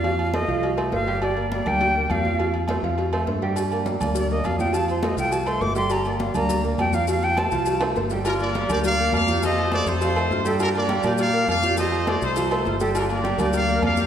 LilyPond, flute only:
\new Staff \with { instrumentName = "Flute" } { \time 4/4 \key g \minor \tempo 4 = 205 f''4 ees''4. r8 f''4 | d''4 d''8 g''4. f''4~ | f''8 r2. r8 | r2 d''8 ees''8 f''8 g''8 |
a''8 c''8 ees''8 g''8 a''8 c'''8 d'''8 c'''8 | bes''8 d''8 f''8 bes''4 r8 g''8 f''8 | f''8 g''8 a''4. r4. | r1 |
r1 | r1 | r1 | r1 | }